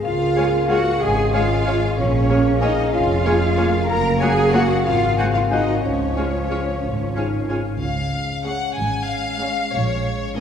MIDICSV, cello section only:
0, 0, Header, 1, 2, 480
1, 0, Start_track
1, 0, Key_signature, -5, "major"
1, 0, Tempo, 642398
1, 27, Time_signature, 6, 3, 24, 8
1, 3386, Tempo, 656455
1, 5786, Tempo, 641026
1, 7724, End_track
2, 0, Start_track
2, 0, Title_t, "Cello section"
2, 0, Program_c, 0, 48
2, 35, Note_on_c, 0, 65, 81
2, 485, Note_off_c, 0, 65, 0
2, 515, Note_on_c, 0, 66, 86
2, 755, Note_off_c, 0, 66, 0
2, 757, Note_on_c, 0, 68, 86
2, 992, Note_off_c, 0, 68, 0
2, 1003, Note_on_c, 0, 65, 89
2, 1470, Note_off_c, 0, 65, 0
2, 1482, Note_on_c, 0, 61, 74
2, 1948, Note_off_c, 0, 61, 0
2, 1958, Note_on_c, 0, 63, 74
2, 2193, Note_on_c, 0, 65, 91
2, 2196, Note_off_c, 0, 63, 0
2, 2893, Note_off_c, 0, 65, 0
2, 2909, Note_on_c, 0, 70, 83
2, 3142, Note_off_c, 0, 70, 0
2, 3150, Note_on_c, 0, 68, 103
2, 3383, Note_off_c, 0, 68, 0
2, 3388, Note_on_c, 0, 66, 91
2, 3623, Note_off_c, 0, 66, 0
2, 3630, Note_on_c, 0, 65, 91
2, 3860, Note_off_c, 0, 65, 0
2, 3862, Note_on_c, 0, 66, 86
2, 3910, Note_off_c, 0, 66, 0
2, 3989, Note_on_c, 0, 65, 74
2, 4035, Note_off_c, 0, 65, 0
2, 4099, Note_on_c, 0, 63, 60
2, 4335, Note_off_c, 0, 63, 0
2, 4340, Note_on_c, 0, 61, 56
2, 5522, Note_off_c, 0, 61, 0
2, 5783, Note_on_c, 0, 49, 50
2, 6370, Note_off_c, 0, 49, 0
2, 6514, Note_on_c, 0, 44, 51
2, 7093, Note_off_c, 0, 44, 0
2, 7232, Note_on_c, 0, 46, 54
2, 7724, Note_off_c, 0, 46, 0
2, 7724, End_track
0, 0, End_of_file